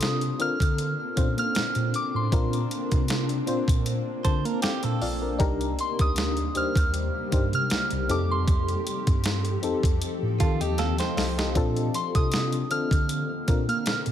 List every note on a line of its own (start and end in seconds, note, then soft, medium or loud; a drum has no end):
0.00 0.31 C3 medium
0.00 8.06 A#3 medium
0.00 0.15 C4 loud
0.00 5.36 C4 medium
0.00 0.16 D4 loud
0.00 5.36 D4 medium
0.00 0.16 F4 loud
0.00 0.16 A4 loud
0.00 0.43 D#6 loud
0.00 snare loud
0.00 closed hi-hat medium
0.21 closed hi-hat soft
0.39 0.48 D3 medium
0.39 1.01 C4 medium
0.39 1.01 D4 medium
0.39 1.02 F4 medium
0.39 1.02 A#4 medium
0.39 1.38 F6 loud
0.39 closed hi-hat medium
0.60 0.93 D3 medium
0.60 kick loud
0.60 closed hi-hat medium
0.78 closed hi-hat medium
1.16 1.35 A#2 medium
1.16 2.08 C4 medium
1.16 1.24 C#4 soft
1.16 2.08 F4 medium
1.16 2.09 C5 medium
1.16 kick medium
1.16 closed hi-hat medium
1.23 2.11 D4 medium
1.37 1.52 A#3 loud
1.37 1.96 F6 loud
1.37 closed hi-hat medium
1.55 1.64 A#2 medium
1.55 snare loud
1.55 closed hi-hat medium
1.75 1.91 A#2 medium
1.75 closed hi-hat soft
1.94 2.14 D6 loud
1.94 closed hi-hat medium
2.14 2.29 A2 medium
2.14 3.65 C6 medium
2.32 2.65 A#2 loud
2.32 3.23 C4 medium
2.32 3.24 D4 medium
2.32 3.24 F4 medium
2.32 3.24 A#4 loud
2.32 kick loud
2.32 closed hi-hat medium
2.53 closed hi-hat medium
2.71 closed hi-hat medium
2.91 3.39 C3 medium
2.91 kick loud
2.91 closed hi-hat medium
3.08 snare loud
3.08 closed hi-hat medium
3.29 closed hi-hat soft
3.47 3.56 A#2 soft
3.47 4.68 C4 medium
3.47 4.63 D4 medium
3.47 4.63 F4 medium
3.47 4.63 C5 loud
3.47 closed hi-hat medium
3.68 4.01 A#2 medium
3.68 kick loud
3.68 closed hi-hat medium
3.86 closed hi-hat medium
4.25 4.42 D3 medium
4.25 4.45 C5 medium
4.25 4.60 A5 medium
4.25 kick medium
4.25 closed hi-hat medium
4.45 4.60 A#3 medium
4.45 4.62 A#4 medium
4.45 closed hi-hat medium
4.62 4.84 G4 medium
4.62 5.00 A4 medium
4.62 5.00 F5 medium
4.62 4.99 G5 medium
4.62 snare loud
4.62 closed hi-hat medium
4.83 4.99 A#2 loud
4.83 5.37 A4 medium
4.83 closed hi-hat medium
5.01 5.40 A#1 medium
5.01 5.22 F4 medium
5.01 5.21 D5 medium
5.01 5.37 F5 medium
5.01 open hi-hat medium
5.22 5.37 D4 medium
5.22 5.39 A#4 medium
5.39 5.72 C2 loud
5.39 8.07 C3 medium
5.39 8.07 G3 medium
5.39 6.31 D4 loud
5.39 6.31 D#4 loud
5.39 6.31 G4 loud
5.39 11.51 G4 loud
5.39 6.31 A#4 loud
5.39 kick loud
5.39 closed hi-hat medium
5.61 closed hi-hat soft
5.79 5.99 C6 medium
5.79 closed hi-hat medium
5.99 6.47 D2 medium
5.99 6.58 D#6 loud
5.99 kick loud
5.99 closed hi-hat medium
6.16 snare loud
6.16 closed hi-hat medium
6.37 closed hi-hat soft
6.54 6.64 D#2 medium
6.54 7.16 D4 medium
6.54 7.17 D#4 medium
6.54 7.17 G4 medium
6.54 7.17 C5 medium
6.54 7.54 F6 loud
6.54 closed hi-hat medium
6.75 7.08 D#2 loud
6.75 kick loud
6.75 closed hi-hat medium
6.94 closed hi-hat medium
7.31 7.50 G2 medium
7.31 8.09 D4 medium
7.31 8.08 D#4 medium
7.31 8.09 G4 medium
7.31 8.10 C5 medium
7.31 kick loud
7.31 closed hi-hat medium
7.53 7.68 C3 loud
7.53 8.12 F6 loud
7.53 closed hi-hat medium
7.70 7.79 C2 soft
7.70 snare loud
7.70 closed hi-hat medium
7.91 8.06 C2 medium
7.91 closed hi-hat medium
8.09 8.74 F2 loud
8.09 11.52 F3 medium
8.09 9.33 C4 medium
8.09 11.52 C4 medium
8.09 9.33 D#4 medium
8.09 9.33 G4 medium
8.09 11.52 A4 medium
8.09 9.34 A4 medium
8.09 8.31 D6 medium
8.09 closed hi-hat medium
8.31 9.81 C6 medium
8.48 kick loud
8.48 closed hi-hat medium
8.68 closed hi-hat soft
8.87 closed hi-hat medium
9.07 9.54 G2 loud
9.07 kick loud
9.07 closed hi-hat medium
9.24 snare loud
9.24 closed hi-hat medium
9.45 closed hi-hat soft
9.62 9.72 F2 medium
9.62 10.83 C4 medium
9.62 10.84 D#4 medium
9.62 10.40 G4 medium
9.62 10.40 A4 loud
9.62 closed hi-hat medium
9.83 9.99 F2 medium
9.83 kick loud
9.83 closed hi-hat medium
10.02 closed hi-hat medium
10.22 10.37 A2 medium
10.40 10.58 D#3 loud
10.40 10.61 F4 medium
10.40 10.60 A5 medium
10.40 kick loud
10.40 closed hi-hat medium
10.61 10.76 D#2 medium
10.61 10.78 G4 medium
10.61 10.98 G4 medium
10.61 10.97 D#5 medium
10.61 10.77 G5 medium
10.61 closed hi-hat medium
10.78 10.96 D#2 loud
10.78 10.98 A4 medium
10.78 11.14 F5 medium
10.78 snare medium
10.78 closed hi-hat medium
10.98 11.53 C5 medium
10.98 11.16 G5 medium
10.98 snare medium
10.98 closed hi-hat medium
11.17 11.55 C2 medium
11.17 11.37 A4 medium
11.17 11.37 D#5 medium
11.17 11.37 F5 medium
11.17 snare medium
11.17 open hi-hat medium
11.38 11.75 G4 medium
11.38 11.74 D#5 medium
11.38 snare medium
11.55 11.88 A#2 loud
11.55 14.12 D3 medium
11.55 14.12 A#3 medium
11.55 12.46 C4 loud
11.55 14.12 C4 medium
11.55 12.47 D4 loud
11.55 12.47 F4 loud
11.55 12.48 A4 loud
11.55 kick loud
11.55 closed hi-hat medium
11.77 closed hi-hat medium
11.94 12.14 C6 medium
11.94 closed hi-hat medium
12.15 12.62 C3 medium
12.15 12.67 D#6 loud
12.15 kick loud
12.15 closed hi-hat medium
12.32 snare loud
12.32 closed hi-hat medium
12.52 closed hi-hat soft
12.70 12.79 D3 soft
12.70 13.32 C4 medium
12.70 13.32 D4 medium
12.70 13.32 F4 medium
12.70 13.33 A4 medium
12.70 13.65 F6 loud
12.70 closed hi-hat medium
12.91 13.24 D3 medium
12.91 kick loud
12.91 closed hi-hat medium
13.09 closed hi-hat medium
13.47 13.65 A#2 medium
13.47 14.12 C4 medium
13.47 14.12 D4 medium
13.47 14.12 F4 medium
13.47 14.12 A#4 medium
13.47 kick loud
13.47 closed hi-hat medium
13.68 13.83 A#3 loud
13.68 14.12 F6 loud
13.68 closed hi-hat medium
13.86 13.94 A#2 medium
13.86 snare loud
13.86 closed hi-hat medium
14.06 14.12 A#2 medium
14.06 closed hi-hat medium